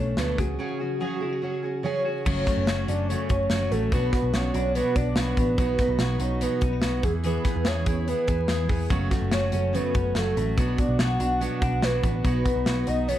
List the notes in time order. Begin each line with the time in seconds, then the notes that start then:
Already playing: B1 B2 A3 A4 C#5
0.00 A3 D4
0.16 D2 B2 F#3 A3 D4 A4 B4, snare, closed hi-hat
0.38 C#2 C#3 C#4 F#4 G#4, kick, closed hi-hat
0.59 C#3 F#3 C#4 F#4 G#4
0.79 C#4 F#4 G#4
1.00 C#3 F#3 C#4 F#4 G#4
1.20 C#4 E4 F#4 G#4
1.33 F#4
1.42 F#3 C#4 F#4 G#4
1.63 C#4 F#4 G#4
1.83 C#3 F#3 C#4 F#4 G#4 C#5
2.04 C#4 F#4 G#4
2.25 F#1 F#2 C#3 F#3 A3 C#4 F#4 C#5, kick, crash
2.46 F#3 A3 C#4 F#4, kick, snare, closed hi-hat
2.57 F#1
2.67 F#1 F#3 A3 C#4 F#4, snare, closed hi-hat
2.88 F#1 F#3 A3 C#4 F#4 D5, closed hi-hat
3.08 F#2 C#3 F#3 A3 C#4 F#4 C#5, closed hi-hat
3.29 F#1 F#3 A3 C#4 F#4, kick, closed hi-hat
3.50 F#1 F#3 A3 C#4, snare, closed hi-hat
3.54 F#4
3.71 A1 F#3 A3 C#4 F#4 A4, closed hi-hat
3.92 B1 B2 F#3 B3 D4 F#4 B4, kick, closed hi-hat
4.12 B3 D4 F#4, kick, snare, closed hi-hat
4.23 B1
4.33 B1 F#3 B3 D4 F#4 C#5, snare, closed hi-hat
4.54 B1 B3 D4 F#4, closed hi-hat
4.75 B2 F#3 B3 D4 F#4 B4, closed hi-hat
4.96 B1 B3 D4 F#4 D5, kick, closed hi-hat
5.16 B1 F#3 B3 D4 B4, snare, closed hi-hat
5.20 F#4
5.37 A1 B3 D4 F#4, kick, closed hi-hat
5.58 B1 B2 F#3 B3 D#4 F#4 B4, kick, closed hi-hat
5.78 B3 D#4 F#4, kick, snare, closed hi-hat
5.88 B1
5.99 B1 F#3 B3 D#4 F#4, snare, closed hi-hat
6.20 B1 B3 D#4 F#4 C#5, closed hi-hat
6.41 B2 F#3 B3 D#4 F#4 B4, closed hi-hat
6.61 B1 B3 C#4 D#4 F#4, kick, closed hi-hat
6.73 D#4
6.82 B1 F#3 B3 D#4, snare, closed hi-hat
6.86 F#4
7.03 E2 E3 B3 E4 G#4, kick, closed hi-hat
7.24 E3 B3 E4 G#4 B4, closed hi-hat
7.44 B3 E4 G#4, kick, snare, closed hi-hat
7.56 E2
7.65 E2 E3 B3 E4 G#4 C#5, snare, closed hi-hat
7.86 E2 B3 E4 G#4, kick, closed hi-hat
8.07 E3 B3 E4 G#4 B4, closed hi-hat
8.27 E2 B3 E4 G#4 B4, kick, closed hi-hat
8.47 E2 E3 B3 E4 G#4, snare, closed hi-hat
8.69 E2 B3 E4 G#4, kick, open hi-hat
8.89 F#1 F#2 C#3 F#3 A3 C#4 F#4, kick, closed hi-hat
9.11 F#3 A3 C#4 F#4, kick, snare, closed hi-hat
9.22 F#1
9.31 F#1 F#3 A3 C#4 F#4 C#5, snare, closed hi-hat
9.52 F#1 F#3 A3 C#4 F#4 C#5, closed hi-hat
9.73 F#2 C#3 F#3 A3 C#4 F#4 B4, closed hi-hat
9.94 F#1 F#3 A3 C#4 F#4, kick, closed hi-hat
10.15 F#1 F#3 A3 C#4 F#4 A4, snare, closed hi-hat
10.36 A1 F#3 A3 C#4 F#4, closed hi-hat
10.57 B1 B2 F#3 B3 D4 F#4 B4, kick, closed hi-hat
10.78 B3 D4 F#4 D5, kick, closed hi-hat
10.89 B1
10.99 B1 F#3 B3 D4 F#4 F#5, snare, closed hi-hat
11.20 B1 B3 D4 F#4, closed hi-hat
11.40 B2 F#3 B3 D4 F#4, closed hi-hat
11.62 B1 B3 D4 F#4, kick, closed hi-hat
11.82 B1 F#3 B3 D4 F#4 B4, snare, closed hi-hat
12.03 A1 B3 D4 F#4, kick, closed hi-hat
12.24 B1 B2 F#3 B3 D#4 F#4 B4, kick, closed hi-hat
12.45 B3 D#4 F#4, kick, closed hi-hat
12.56 B1
12.66 B1 F#3 B3 D#4 F#4, snare, closed hi-hat
12.87 B1 B3 D#4 F#4 D#5, closed hi-hat
13.08 B2 F#3 B3 D#4 F#4 C#5, closed hi-hat